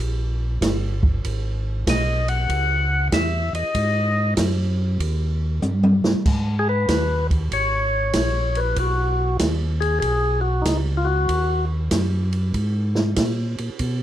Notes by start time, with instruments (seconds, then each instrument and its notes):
0.00 tonewheel organ A#1
0.61 tonewheel organ G1, kick, snare, hi-hat pedal, ride
1.03 kick
1.24 tonewheel organ G#1, kick, ride
1.87 tonewheel organ B1 D#5, kick, snare, hi-hat pedal, ride
2.28 tonewheel organ F#5, ride
2.49 tonewheel organ C#2, kick, ride
3.12 tonewheel organ E2 E5, kick, snare, hi-hat pedal, ride
3.53 tonewheel organ E2 D#5, ride
3.75 tonewheel organ G#2, kick, ride
4.37 tonewheel organ F#2, kick, snare, hi-hat pedal, ride
4.99 tonewheel organ D#2, kick, ride
5.62 tonewheel organ G2, hi-hat pedal, high tom
5.83 high tom
6.04 tonewheel organ G2, snare
6.25 tonewheel organ G#2, kick, crash
6.59 tonewheel organ G#4
6.69 tonewheel organ B4
6.88 tonewheel organ D#2, kick, snare, hi-hat pedal, ride
7.30 kick, ride
7.51 tonewheel organ G#1 C#5, kick, ride
8.13 tonewheel organ A#1, kick, snare, hi-hat pedal, ride
8.55 tonewheel organ B4, ride
8.76 tonewheel organ B1 F#4, kick, ride
9.39 tonewheel organ D#2, kick, snare, hi-hat pedal, ride
9.80 tonewheel organ G#4, ride
10.00 tonewheel organ B1 G#4, kick, ride
10.41 tonewheel organ F#4
10.62 tonewheel organ C#2 D#4, kick, snare, hi-hat pedal, ride
10.97 tonewheel organ F4
11.05 tonewheel organ F#4
11.28 tonewheel organ D#2, kick, ride
11.91 tonewheel organ F#2, kick, snare, hi-hat pedal, ride
12.33 ride
12.54 tonewheel organ G#2, kick, ride
12.95 snare
13.16 tonewheel organ A#2, kick, snare, hi-hat pedal, ride
13.58 tonewheel organ A#2, ride
13.79 tonewheel organ B2, kick, ride